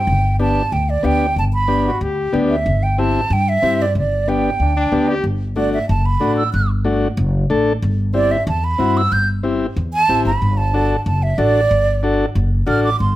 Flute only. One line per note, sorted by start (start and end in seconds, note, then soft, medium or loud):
0.00 0.36 G5 medium
0.41 0.74 A5 loud
0.72 0.91 G5 medium
0.90 1.06 D5 medium
1.05 1.37 G5 loud
1.39 1.45 A5 medium
1.53 1.98 B5 loud
2.50 2.85 E5 medium
2.83 3.01 G5 medium
2.99 3.34 A5 loud
3.33 3.50 G5 medium
3.49 3.83 E5 loud
3.82 3.97 D5 medium
3.98 4.30 D5 medium
4.29 5.09 G5 medium
5.57 5.73 D5 loud
5.74 5.89 E5 medium
5.89 6.07 A5 medium
6.06 6.37 B5 medium
6.37 6.53 E6 medium
6.53 6.69 F#6 medium
8.15 8.33 D5 loud
8.31 8.47 E5 medium
8.48 8.66 A5 medium
8.64 8.99 B5 medium
8.97 9.14 E6 loud
9.12 9.28 G6 medium
9.94 10.25 A5 loud
10.27 10.59 B5 medium
10.57 11.05 A5 medium
11.06 11.24 A5 medium
11.23 11.40 E5 medium
11.39 12.01 D5 loud
12.68 12.84 F6 medium
12.84 13.00 D6 medium
13.00 13.16 C6 medium